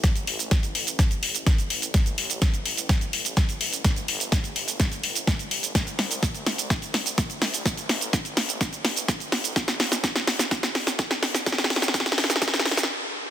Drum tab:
HH |x-x-o-x-x-x-o-x-x-x-o-x-x-x-o-x-|x-x-o-x-x-x-o-x-x-x-o-x-x-x-o-x-|x-x-o-x-x-x-o-x-x-x-o-x-x-x-o-x-|x-x-o-x-x-x-o-x-x-x-o-x-x-x-o-x-|
SH |x-x---x-x-x---x-x-x---x-x-x---x-|x-x---x-x-x---x-x-x---x-x-x---x-|x-x---x-x-x---x-x-x---x-x-x---x-|x-x---x-x-x---x-x-x---x-x-x---x-|
SD |o-------o-------o-------o-------|o-------o-------o-------o-------|o-------o-------o-------o-------|o---o---o---o---o---o---o---o---|
BD |o-------o-------o-------o-------|o-------o-------o-------o-------|o-------o-------o-------o-------|o-------o-------o-------o-------|

HH |x-x-o-x-x-x-o-x-x-x-o-x-x-x-o-x-|x-x-o-x-x-x-o-x-x-x-o-x-x-x-o-x-|x-x-o-x-x-x-o-x-x-x-o-----------|
SH |x-x---x-x-x---x-x-x---x-x-x---x-|x-x---x-x-x---x-x-x---x-x-x---x-|x-x---x-x-x---x-x-x---x---------|
SD |o---o---o---o---o---o---o---o---|o-o-o-o-o-o-o-o-o-o-o-o-o-o-o-o-|oooooooooooooooooooooooo--------|
BD |o-------o-------o-------o-------|o-------o-------o-------o-------|o-------o-------o---------------|